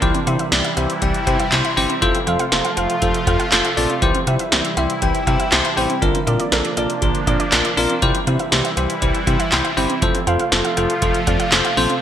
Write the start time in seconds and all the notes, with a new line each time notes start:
Already playing: C3
0.02 C2 E3 G3 E4 G4 C5, kick, closed hi-hat
0.15 C4, closed hi-hat
0.27 C3 E4 G4 C5 E5, closed hi-hat
0.39 E5, closed hi-hat
0.52 C2 E4 G4 D5, snare, closed hi-hat
0.64 E5, closed hi-hat
0.77 C2 E4 G4 C5 E5, closed hi-hat
0.90 closed hi-hat
1.02 C2 E3 E4 G4 D5 G5, kick, closed hi-hat
1.14 closed hi-hat
1.27 C3 E4 G4 C5 E5 G5, kick, closed hi-hat
1.40 E5, closed hi-hat
1.52 C2 E4 G4 C5 C6, snare, clap, closed hi-hat
1.65 E5, closed hi-hat
1.77 G1 C4 E4 G4 C5, open hi-hat
1.90 C4, closed hi-hat
2.02 F1 F3 A3 F4 A4 C5, kick, closed hi-hat
2.15 C4, closed hi-hat
2.27 F2 F4 A4 C5 F5, closed hi-hat
2.39 F5, closed hi-hat
2.52 F1 F4 A4 C5, snare, closed hi-hat
2.65 F5, closed hi-hat
2.77 F1 F4 A4 C5 F5, closed hi-hat
2.90 closed hi-hat
3.02 F1 F3 F4 A4 C5, kick, closed hi-hat
3.14 closed hi-hat
3.27 F2 F4 A4 C5 F5, kick, closed hi-hat
3.40 F5, closed hi-hat
3.52 F1 F4 A4 C5, snare, clap, closed hi-hat
3.65 F5, closed hi-hat
3.77 A#1 C4 F4 A4 D5, open hi-hat
3.90 C4, closed hi-hat
4.02 C2 E3 G3 E4 G4 C5, kick, closed hi-hat
4.15 C4, closed hi-hat
4.27 C3 E4 G4 C5 E5, closed hi-hat
4.39 E5, closed hi-hat
4.52 C2 E4 G4 C5, snare, closed hi-hat
4.65 E5, closed hi-hat
4.77 C2 E4 G4 C5 E5, closed hi-hat
4.90 closed hi-hat
5.02 C2 E3 E4 G4 C5 G5, kick, closed hi-hat
5.15 closed hi-hat
5.27 C3 E4 G4 C5 E5 G5, kick, closed hi-hat
5.40 E5, closed hi-hat
5.52 C2 E4 G4 C5 A5, snare, clap, closed hi-hat
5.65 E5, closed hi-hat
5.77 A1 C4 E4 G4 C5 G5, open hi-hat
5.90 C4, closed hi-hat
6.02 A#1 D3 F3 A#3 D4 F4 A#4, kick, closed hi-hat
6.15 C4, closed hi-hat
6.27 A#2 D4 F4 A#4 D5, closed hi-hat
6.40 D5, closed hi-hat
6.52 A#1 D4 F4 A4 A#4, snare, closed hi-hat
6.65 D5, closed hi-hat
6.77 A#1 D4 F4 A#4 D5, closed hi-hat
6.90 closed hi-hat
7.02 A#1 D3 D4 F4 A#4, kick, closed hi-hat
7.15 closed hi-hat
7.27 A#2 D4 F4 A#4 D5, kick, closed hi-hat
7.40 D5, closed hi-hat
7.52 A#1 D4 F4 A#4, snare, clap, closed hi-hat
7.65 D5, closed hi-hat
7.77 A#1 C4 D4 F4 A#4, open hi-hat
7.90 C4, closed hi-hat
8.02 C2 E3 G3 E4 G4 C5, kick, closed hi-hat
8.15 C4, closed hi-hat
8.27 C3 E4 G4 C5 E5, closed hi-hat
8.39 E5, closed hi-hat
8.52 C2 E4 G4 C5, snare, closed hi-hat
8.65 E5, closed hi-hat
8.77 C2 E4 G4 C5 E5, closed hi-hat
8.90 closed hi-hat
9.02 C2 E3 E4 G4 C5, kick, closed hi-hat
9.15 closed hi-hat
9.27 C3 E4 G4 C5 E5, kick, closed hi-hat
9.40 E5, closed hi-hat
9.52 C2 E4 G4 C5, snare, clap, closed hi-hat
9.64 E5, closed hi-hat
9.77 G1 C4 E4 G4 C5, open hi-hat
9.90 C4, closed hi-hat
10.02 F1 C3 F3 A3 F4 A4 C5, kick, closed hi-hat
10.15 C4, closed hi-hat
10.27 F2 F4 A4 C5 F5, closed hi-hat
10.39 F5, closed hi-hat
10.52 F1 F4 A4 C5, snare, closed hi-hat
10.65 F5, closed hi-hat
10.77 F1 F4 A4 C5 F5, closed hi-hat
10.90 closed hi-hat
11.02 F1 F3 F4 A4 C5, kick, closed hi-hat
11.15 closed hi-hat
11.27 F2 F4 A4 D5 F5, kick, closed hi-hat
11.40 F5, closed hi-hat
11.52 F1 F4 A4 C5, snare, clap, closed hi-hat
11.65 F5, closed hi-hat
11.77 A#1 C4 F4 A4 C5, open hi-hat
11.90 C4, closed hi-hat